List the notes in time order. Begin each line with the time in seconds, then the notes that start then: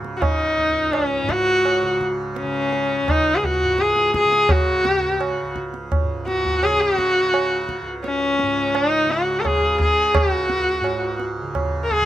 Already playing: C#2 G#2 C#3
0.02 C#3, tabla te
0.17 F#4
0.22 D#4, tabla na, tabla ge
0.58 C#2, tabla ge
0.93 C#4, tabla na
1.23 G#2
1.29 F#4, tabla ke
1.65 tabla na
1.83 C#3
2.01 tabla ke
2.36 C#4, tabla te
2.43 C#3
2.73 tabla te
3.03 C#2
3.08 D#4, tabla na, tabla ge
3.36 G#4
3.44 F#4, tabla ge
3.63 G#2
3.78 G#4, tabla te
3.96 tabla te
4.14 G#4, tabla ke
4.25 C#3
4.32 tabla te
4.49 F#4, tabla na, tabla ge
4.84 C#3, tabla te
5.21 tabla na
5.43 C#2
5.56 tabla ke
5.74 tabla te
5.92 tabla na, tabla ge
6.03 G#2
6.27 F#4, tabla te
6.45 tabla ge
6.63 C#3 G#4, tabla na
6.81 F#4
6.98 tabla ke
7.22 C#3
7.34 tabla na
7.69 tabla ke
7.82 C#2
8.04 C#4, tabla te
8.39 G#2, tabla te
8.75 D#4, tabla na
9.05 C#3
9.09 F#4, tabla te
9.40 A#4
9.45 G#4, tabla na, tabla ge
9.62 C#3
9.80 G#4, tabla ge
10.15 F#4, tabla na, tabla ge
10.21 C#2
10.49 tabla te
10.80 G#2, tabla na
11.20 tabla te
11.42 C#3
11.55 tabla na, tabla ge
11.84 A#4
11.91 G#4, tabla ge
12.01 C#3